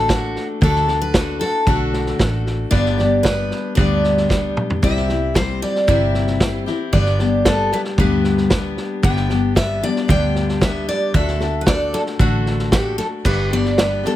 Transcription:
Already playing: A1 A4
0.08 A3 D4 F#4 A4, kick, snare, hi-hat pedal
0.36 snare
0.61 D2 D3 A3 D4 F#4 A4, kick, snare
0.75 snare
0.87 D4 F#4 A4, snare
1.02 B4
1.14 A3 D4 F#4 A4, kick, snare, hi-hat pedal
1.39 D4 F#4 A4, snare
1.67 B1 D3 A3 D4 F#4 A4, kick, snare
1.93 snare
2.06 snare
2.19 A1 A3 D4 F#4 A4, kick, snare, hi-hat pedal
2.46 snare
2.71 G1 G2 D3 G3 B3 D4 G4 D5, kick, snare
2.86 snare
2.98 G3 B3 D4 G4, snare
3.23 G3 B3 D4 G4 B4, kick, snare, hi-hat pedal
3.51 snare
3.75 D2 G2 D3 G3 B3 D4 G4 D5, kick, snare
4.04 snare
4.17 snare
4.29 G3 B3 D4 G4, kick, snare, hi-hat pedal
4.57 mid tom
4.70 floor tom
4.82 C2 C3 G3 C4 E4 G4 E5, kick, snare
4.97 snare
5.08 C4 E4 G4, snare
5.34 G3 C4 E4 G4 C5, kick, snare, hi-hat pedal
5.62 D5, snare
5.75 snare
5.87 G1 C3 G3 C4 E4 G4 E5, kick, snare
6.14 snare
6.27 snare
6.40 G3 C4 E4 G4, kick, snare, hi-hat pedal
6.66 C4 E4 G4, snare
6.92 G1 G2 D3 G3 B3 D4 G4 D5, kick, snare
7.06 snare
7.19 G3 B3 D4 G4, snare
7.45 G3 B3 D4 G4 A4, kick, snare, hi-hat pedal
7.71 B4, snare
7.85 snare
7.97 D2 G2 D3 G3 B3 D4 G4 B4, kick, snare
8.24 snare
8.37 snare
8.50 G3 B3 D4 G4, kick, snare, hi-hat pedal
8.77 snare
9.03 G1 G2 D3 G3 B3 D4 G4 G5, kick, snare
9.16 snare
9.29 G3 B3 D4 G4, snare
9.55 G3 B3 D4 G4 E5, kick, snare, hi-hat pedal
9.81 G3 B3 D4 G4 D5, snare
9.96 snare
10.08 D2 G2 D3 G3 B3 D4 G4 G5, kick, snare
10.35 snare
10.49 snare
10.61 G3 B3 D4 G4 E5, kick, snare, hi-hat pedal
10.88 D5, snare
11.14 D2 D3 A3 D4 F#4 A4 E5, kick, snare
11.28 snare
11.40 D4 F#4 A4, snare
11.61 B4
11.66 A3 D4 F#4 A4 D5, kick, snare, hi-hat pedal
11.93 A4, snare
12.06 snare
12.19 A1 D3 A3 D4 F#4 A4, kick, snare
12.46 snare
12.59 snare
12.71 A3 D4 F#4 G4 A4, kick, snare, hi-hat pedal
12.98 A4, snare
13.24 G1 G2 D3 G3 B3 D4 G4 B4, kick, snare, crash
13.51 G3 B3 D4 G4 D5, snare
13.65 snare
13.78 G3 B3 D4 G4 B4, snare, hi-hat pedal
14.03 G3 B3 D4 G4 A4, snare

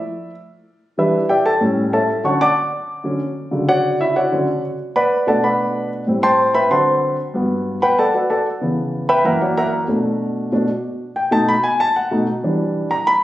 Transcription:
Already playing: E5
0.98 E3 G3 D4 E4 G4 B4 E5
1.29 G4 D5 E5 G5
1.46 A4 A5
1.61 A2 G3 C#4
1.93 A4 C#5 E5 A5
2.24 D3 F#3 C#4 C#5 F#5 A5 C#6
2.41 D5 F#5 A5 D6
3.04 D3 F#3 C#4
3.51 C#3 D3 F#3
3.69 F#4 C#5 D5 F#5
4.01 E4 E5
4.16 F#4 C#5 D5 F#5
4.32 D3 F#3 C#4
4.96 B4 D5 F#5 B5
5.27 B2 A3 D4 A4 D5 F#5 A5
5.44 B4 D5 F#5 B5
6.07 A2 G3 C4
6.23 C5 G5 A5 C6
6.55 B4 E5 G5 B5
6.70 D3 F#3 C4 C5 F#5 A5 C6
7.34 G2 F#3 B3
7.82 B4 F#5 G5 B5
7.99 A4 D5 F#5 A5
8.14 F#4 B4 D5 F#5
8.30 A4 D5 F#5 A5
8.61 C#3 E3 B3
9.09 B4 E5 G5 B5
9.24 F#2 E3 A#3 A#4 E5 F#5 A#5
9.41 F#4 C#5 D5 F#5
9.57 A#4 E5 F#5 A#5
9.88 B2 A3 D4
10.52 B2 A3 D4
11.16 G5
11.31 B2 A3 D#4 A5
11.49 B5
11.64 G#5
11.80 A5
11.96 F#5
12.11 B2 A3 D#4
12.43 E3 G3 D4
12.91 A#5
13.07 B5

